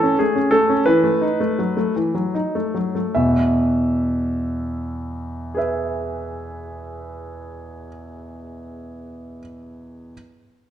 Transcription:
Already playing: A4
0.03 C#4
0.19 A3 G#4
0.36 C#4
0.51 A3 A4
0.69 C#4
0.86 E3 B4
1.03 A3
1.21 D#4
1.40 A3
1.59 F#3
1.77 A3
1.96 E3
2.14 F#3
2.34 D#4
2.55 A3
2.74 F#3
2.95 A3
3.15 E2 B2 E5
5.55 G#4 B4 E5

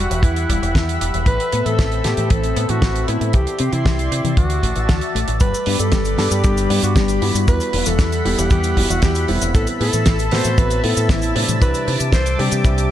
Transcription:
Already playing: F#4 G4 E5 F#5 B5
0.11 E1 E3, closed hi-hat
0.23 E2 E3 E4, kick, closed hi-hat
0.36 closed hi-hat
0.49 E1 G3, kick, closed hi-hat
0.62 E1 E3, closed hi-hat
0.75 E2 E3, kick, snare, closed hi-hat
0.89 closed hi-hat
1.01 E1 G3, closed hi-hat
1.14 E1 E3, closed hi-hat
1.26 A1 E3 C4 A4 B4, kick, closed hi-hat
1.40 closed hi-hat
1.52 A2 B3, closed hi-hat
1.66 A2 E3 A4, closed hi-hat
1.79 A1 E3, kick, snare, closed hi-hat
1.92 closed hi-hat
2.04 A2 B3 G4, snare, closed hi-hat
2.17 A2 E3, closed hi-hat
2.30 A1 E3 A4, kick, closed hi-hat
2.43 closed hi-hat
2.56 A2 B3, closed hi-hat
2.69 A2 E3 F#4, closed hi-hat
2.82 A1 E3, kick, snare, closed hi-hat
2.96 closed hi-hat
3.08 A2 B3 E4, closed hi-hat
3.21 A2 E3, closed hi-hat
3.33 C2 E3 G4 D5 C6, kick, closed hi-hat
3.47 closed hi-hat
3.59 C3 C4, closed hi-hat
3.73 C3 E3 E4, closed hi-hat
3.86 C2 E3, kick, snare, closed hi-hat
3.99 closed hi-hat
4.11 C3 C4, closed hi-hat
4.24 C3 E3, closed hi-hat
4.37 D2 E3 F#4 E5 A5, kick, closed hi-hat
4.50 closed hi-hat
4.63 A1 A3, kick, closed hi-hat
4.76 A1 E3, closed hi-hat
4.89 D2 E3, kick, snare, closed hi-hat
5.01 closed hi-hat
5.15 A1 A3, closed hi-hat
5.28 A1 E3, closed hi-hat
5.40 G1 G3 B4 D5 B5, kick, closed hi-hat, cabasa
5.54 closed hi-hat, cabasa
5.66 G2 G3 B3 D4 G4, open hi-hat
5.79 G2 G3 A4, closed hi-hat, cabasa
5.92 G1 G3, kick, snare, closed hi-hat, cabasa
6.05 closed hi-hat, cabasa
6.18 G2 G3 B3 D4 A4, snare, open hi-hat
6.31 G2 G3 G4, closed hi-hat, cabasa
6.44 G1 G3 G4, kick, closed hi-hat, cabasa
6.57 closed hi-hat, cabasa
6.70 G2 G3 B3 D4 G4, open hi-hat
6.83 G2 G3 F#4, closed hi-hat, cabasa
6.96 G1 G3 G4, kick, snare, closed hi-hat, cabasa
7.08 closed hi-hat, cabasa
7.22 G2 G3 B3 D4 E4 F#4, open hi-hat
7.35 G2 G3, closed hi-hat, cabasa
7.48 E2 E3 B4 E5 F#5, kick, closed hi-hat, cabasa
7.60 closed hi-hat, cabasa
7.73 E1 G3 B3 E4 F#4, open hi-hat
7.86 E1 E3 A4, closed hi-hat, cabasa
7.99 E2 E3, kick, snare, closed hi-hat, cabasa
8.12 closed hi-hat, cabasa
8.25 E1 G3 B3 E4 G4, open hi-hat
8.38 E1 E3 G4, closed hi-hat, cabasa
8.50 E2 E3 G4, kick, closed hi-hat, cabasa
8.64 closed hi-hat, cabasa
8.77 E1 G3 B3 E4 F#4, kick, open hi-hat
8.90 E1 E3 F#4, closed hi-hat, cabasa
9.02 E2 E3 G4, kick, snare, closed hi-hat, cabasa
9.15 closed hi-hat, cabasa
9.28 E1 A2 G3 A3 B3 C4 E4, open hi-hat
9.41 E1 E3, closed hi-hat, cabasa
9.55 A1 E3 A4 A5, kick, closed hi-hat, cabasa
9.67 closed hi-hat, cabasa
9.80 A2 A3 B3 C4 E4 A4, open hi-hat
9.93 A2 E3, closed hi-hat, cabasa
10.06 A1 E3, kick, snare, closed hi-hat, cabasa
10.19 closed hi-hat, cabasa
10.31 A2 A3 B3 C4 F#4 C5, snare, open hi-hat
10.44 A2 E3, closed hi-hat, cabasa
10.58 A1 E3 B4, kick, closed hi-hat, cabasa
10.70 closed hi-hat, cabasa
10.84 A2 A3 B3 C4 E4 A4, open hi-hat
10.97 A2 E3, closed hi-hat, cabasa
11.09 A1 E3 E4, kick, snare, closed hi-hat, cabasa
11.22 closed hi-hat, cabasa
11.35 A2 C3 G3 B3 C4 D4 E4, open hi-hat
11.48 A2 E3, closed hi-hat, cabasa
11.61 C2 E3 G3 B4 D6, kick, closed hi-hat, cabasa
11.74 closed hi-hat, cabasa
11.87 C3 G3 C4 D4 E4, open hi-hat
12.00 C3 E3, closed hi-hat, cabasa
12.12 C2 E3 C5, kick, snare, closed hi-hat, cabasa
12.26 closed hi-hat, cabasa
12.39 C3 G3 C4 D4 G4, open hi-hat
12.52 C3 E3, closed hi-hat, cabasa
12.65 C2 E3, kick, closed hi-hat, cabasa
12.78 closed hi-hat, cabasa

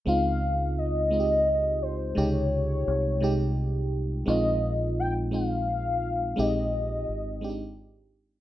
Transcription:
0.06 C#2 G#3 C4 D#4 F4 F5
0.78 D#5
1.10 G#3 C4 D#4 F4
1.20 G4
1.82 C5
2.15 C#2 C3 G#3 D#4 G4 C#5
2.88 C2
3.20 C3 G#3 D#4 G4
4.26 A#1 G#3 C4 D#4 F4 D#5
4.99 G5
5.31 G#3 C4 D#4 F4 F5
6.36 A#1 G#3 C4 D#4 G4 D#5
7.09 G#1
7.41 G#3 C4 D4 G4
7.50 D#4

